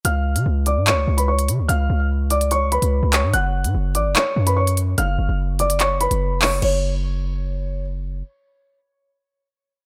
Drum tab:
CC |----------------|----------------|----------------|----------------|
HH |x--x--x-x--x-xx-|x-----xxx-xx--x-|x--x--x-x--x-xx-|x-----xxx-xx--o-|
CP |--------x-------|--------------x-|--------x-------|--------x-----x-|

CC |x---------------|----------------|
HH |----------------|----------------|
CP |----------------|----------------|